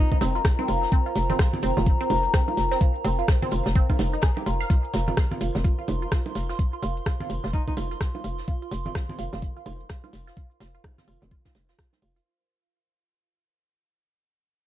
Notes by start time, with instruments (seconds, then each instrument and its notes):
Already playing: ambient pad F4 A#4 C5 A#5
0.12 alto saxophone D#4, kick, low bongo, shaker
0.21 fm bass F1, synth arpeggio sound C4, snare, closed hi-hat, open hi-hat, low bongo
0.35 synth arpeggio sound F4, closed hi-hat, shaker
0.45 kick, cross-stick, snare, closed hi-hat
0.59 synth arpeggio sound C4, low bongo, shaker
0.68 fm bass F1, synth arpeggio sound F4, closed hi-hat, open hi-hat
0.83 snare, shaker
0.92 synth arpeggio sound C4, kick, closed hi-hat
1.06 synth arpeggio sound F4, shaker
1.15 fm bass F1, snare, closed hi-hat, open hi-hat
1.30 synth arpeggio sound C4, low conga, shaker
1.39 synth arpeggio sound F4, kick, cross-stick, snare, closed hi-hat
1.53 low conga
1.62 fm bass F1, synth arpeggio sound C4, closed hi-hat, open hi-hat
1.77 fm bass F1, synth arpeggio sound F4, snare, low conga, shaker
1.86 kick, closed hi-hat
2.01 synth arpeggio sound C4, shaker
2.10 fm bass F1, synth arpeggio sound F4, closed hi-hat, open hi-hat, low bongo
2.24 shaker
2.34 synth arpeggio sound C4, kick, cross-stick, snare, closed hi-hat
2.48 synth arpeggio sound F4, low bongo, shaker
2.57 fm bass F1, snare, closed hi-hat, open hi-hat
2.72 synth arpeggio sound C4, snare, shaker
2.81 synth arpeggio sound F4, kick, closed hi-hat
2.95 shaker
3.05 fm bass F1, synth arpeggio sound C4, closed hi-hat, open hi-hat
3.19 synth arpeggio sound F4, shaker
3.28 kick, cross-stick, snare, closed hi-hat
3.42 synth arpeggio sound C4, low conga
3.51 fm bass F1, synth arpeggio sound F4, closed hi-hat, open hi-hat
3.66 fm bass F1, snare, shaker
3.75 synth arpeggio sound C4, kick, closed hi-hat
3.90 synth arpeggio sound F4, kick, low bongo, shaker
3.99 fm bass F1, snare, closed hi-hat, open hi-hat, low bongo
4.13 synth arpeggio sound D#4, closed hi-hat, shaker
4.22 synth arpeggio sound G#4, kick, cross-stick, snare, closed hi-hat
4.37 synth arpeggio sound G4, low bongo, shaker
4.46 fm bass F1, synth arpeggio sound F4, closed hi-hat, open hi-hat
4.60 synth arpeggio sound F5, snare, shaker
4.70 synth arpeggio sound F4, kick, closed hi-hat
4.84 shaker
4.94 fm bass F1, synth arpeggio sound F4, snare, closed hi-hat, open hi-hat
5.08 synth arpeggio sound F4, low conga, shaker
5.17 kick, cross-stick, snare, closed hi-hat
5.25 ambient pad C6
5.31 synth arpeggio sound F4, low conga
5.41 fm bass F1, synth arpeggio sound F4, closed hi-hat, open hi-hat
5.55 fm bass F1, snare, low conga, shaker
5.64 synth arpeggio sound F4, kick, closed hi-hat
5.79 synth arpeggio sound F4, shaker
5.88 fm bass F1, closed hi-hat, open hi-hat, low bongo
6.02 synth arpeggio sound F4, shaker
6.12 synth arpeggio sound F4, kick, cross-stick, snare, closed hi-hat
6.26 low bongo, shaker
6.35 fm bass F1, synth arpeggio sound F4, snare, closed hi-hat, open hi-hat
6.49 synth arpeggio sound F4, snare, shaker
6.59 kick, closed hi-hat
6.73 synth arpeggio sound F4, shaker
6.83 fm bass F1, synth arpeggio sound F4, closed hi-hat, open hi-hat
6.97 shaker
7.06 synth arpeggio sound F4, kick, cross-stick, snare, closed hi-hat
7.20 synth arpeggio sound F4, low conga
7.30 fm bass F1, closed hi-hat, open hi-hat
7.44 fm bass F1, synth arpeggio sound F4, snare, shaker
7.53 alto saxophone D#4, synth arpeggio sound F4, kick, closed hi-hat
7.68 alto saxophone D#4, kick, low bongo, shaker
7.77 fm bass F1, synth arpeggio sound F4, snare, closed hi-hat, open hi-hat, low bongo
7.91 synth arpeggio sound F4, closed hi-hat, shaker
8.01 kick, cross-stick, snare, closed hi-hat
8.15 synth arpeggio sound F4, low bongo, shaker
8.24 fm bass F1, synth arpeggio sound F4, closed hi-hat, open hi-hat
8.38 snare, shaker
8.48 synth arpeggio sound F4, kick, closed hi-hat
8.62 synth arpeggio sound F4, shaker
8.71 fm bass F1, snare, closed hi-hat, open hi-hat
8.86 synth arpeggio sound F4, low conga, shaker
8.95 synth arpeggio sound F4, kick, cross-stick, snare, closed hi-hat
9.09 low conga
9.19 fm bass F1, synth arpeggio sound F4, closed hi-hat, open hi-hat
9.33 fm bass F1, synth arpeggio sound F4, snare, low conga, shaker
9.42 kick, closed hi-hat
9.57 synth arpeggio sound F4, shaker
9.66 fm bass F1, synth arpeggio sound F4, open hi-hat, low bongo
9.80 shaker
9.89 synth arpeggio sound F4, kick, cross-stick, snare, closed hi-hat
10.04 synth arpeggio sound F4, low bongo, shaker
10.13 fm bass F1, snare, closed hi-hat, open hi-hat
10.27 synth arpeggio sound F4, snare, shaker
10.37 synth arpeggio sound F4, kick, closed hi-hat
10.51 shaker
10.60 fm bass F1, synth arpeggio sound F4, snare, closed hi-hat, open hi-hat
10.75 synth arpeggio sound F4, shaker
10.84 kick, cross-stick, closed hi-hat, low bongo
10.98 synth arpeggio sound F4, snare, closed hi-hat, low conga, shaker
11.08 fm bass F1, synth arpeggio sound F4, open hi-hat
11.22 fm bass F1, closed hi-hat, low conga, shaker
11.31 synth arpeggio sound F4, kick, closed hi-hat
11.45 synth arpeggio sound F4, kick, snare, closed hi-hat, low bongo, shaker
11.55 fm bass F1, snare, closed hi-hat, open hi-hat, low bongo
11.69 synth arpeggio sound F4, snare, closed hi-hat, shaker
11.79 synth arpeggio sound F4, kick, cross-stick, snare, closed hi-hat
11.93 snare, closed hi-hat, low bongo, shaker
12.02 fm bass F1, synth arpeggio sound F4, open hi-hat
12.16 synth arpeggio sound F4, closed hi-hat, shaker